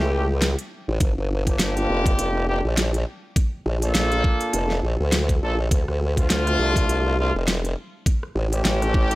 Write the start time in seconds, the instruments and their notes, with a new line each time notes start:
0.00 wobble bass C#2
0.12 horn section A3 C#4 E4 G4
0.42 snare, closed hi-hat
0.59 closed hi-hat
0.88 wobble bass A1
1.00 wobble bass G1, kick, closed hi-hat
1.17 wobble bass G1
1.47 horn section A#3 D4 F4 G4, kick, closed hi-hat
1.59 wobble bass G1, snare, closed hi-hat
1.77 closed hi-hat
1.89 wobble bass F1
2.06 kick, closed hi-hat
2.19 wobble bass F1, closed hi-hat
2.47 horn section A#3 D4 F4 G4
2.65 wobble bass A#1
2.77 snare, closed hi-hat
2.94 closed hi-hat
3.36 kick, closed hi-hat
3.66 wobble bass A#1
3.82 horn section A#3 D4 F4 A4, closed hi-hat
3.95 wobble bass A#1, snare, closed hi-hat
4.12 closed hi-hat
4.24 kick
4.41 closed hi-hat
4.53 wobble bass F1, closed hi-hat
4.70 snare
4.83 wobble bass A#1
5.00 wobble bass D2
5.12 snare, closed hi-hat
5.29 kick, closed hi-hat
5.42 wobble bass A#1, horn section A#3 D4 F4 A4
5.71 wobble bass D2, kick, closed hi-hat
5.88 wobble bass D2, cross-stick
6.17 horn section A3 C4 D4 F4, kick, closed hi-hat
6.30 wobble bass D2, snare, closed hi-hat
6.47 cross-stick, closed hi-hat
6.59 wobble bass C2
6.76 kick, closed hi-hat
6.89 wobble bass C2, closed hi-hat
7.18 horn section A3 C4 D4 F4
7.35 wobble bass F1
7.48 snare, closed hi-hat
7.65 closed hi-hat
8.06 kick, closed hi-hat
8.23 cross-stick
8.35 wobble bass A1
8.52 horn section A3 C#4 E4 G4, closed hi-hat
8.65 wobble bass A1, snare, closed hi-hat
8.82 cross-stick, closed hi-hat
8.94 wobble bass A1, kick
9.11 closed hi-hat